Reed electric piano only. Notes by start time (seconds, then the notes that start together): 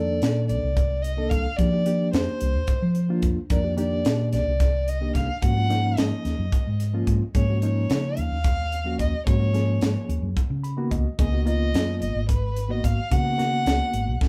Already playing: D#3 A#3 D4 A4
1.17 D#3 A#3 D4 A4
1.58 D#3 A#3 D4 G4
1.71 D#3 A#3 D4 G4
1.85 D#3 A#3 D4 G4
3.09 D#3 A#3 D4 F4
3.50 D#3 A#3 D4 A#4
3.63 D#3 A#3 D4 G4
3.77 D#3 A#3 D4 G4
5.01 D#3 A#3 D4 G4
5.42 F3 A#3 C#4 F#4
5.56 F3 A#3 C#4 F4
5.69 F3 A#3 C#4 D#4
6.93 F3 A#3 C#4 F4
7.35 F3 A#3 C#4 G#4
7.49 F3 A#3 C#4 F#4
7.62 F3 A#3 C#4 D#4
8.85 F3 A#3 C#4 F#4
9.26 F3 A#3 C#4 F#4
9.39 F3 A#3 C#4 F#4
9.53 F3 A#3 C#4 G#4
10.63 B5
10.77 D#3 A#3 B3 F#4
10.91 D#5
11.19 D#3 A#3 B3 G#4
11.32 D#3 A#3 B3 F#4
11.45 D#3 A#3 B3 F4
12.68 D#3 A#3 B3 F#4
13.11 D#3 A#3 B3 F#4
13.23 D#3 A#3 B3 F#4
13.38 D#3 A#3 B3 F#4